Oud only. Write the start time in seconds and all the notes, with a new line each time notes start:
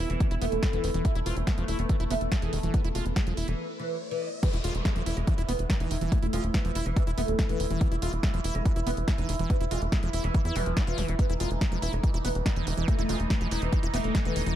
0.10 E3
0.41 A3
0.73 B3
1.05 E4
1.26 C4
1.47 B3
1.79 B3
2.11 E4
2.42 G#4
2.74 B3
2.95 G#3
3.16 G#3
3.48 E3
3.79 E3
4.11 E3
4.43 B3
4.64 G#3
4.85 G#3
5.17 G#3
5.49 B3
5.80 D#4
6.12 A3
6.33 F3
6.54 E3
6.86 E3
7.18 A3
7.49 B3
7.81 B3
8.02 G#3
8.23 G#3
8.55 G#3
8.87 B3
9.18 D#4
9.50 B3
9.71 G#3
9.92 G#3
10.24 E3
10.56 E3
10.87 E3
11.19 B3
11.40 G#3
11.61 G#3
11.93 G#3
12.25 B3
12.56 D#4
12.88 A3
13.09 F3
13.30 E3
13.62 E3
13.94 A3
14.25 B3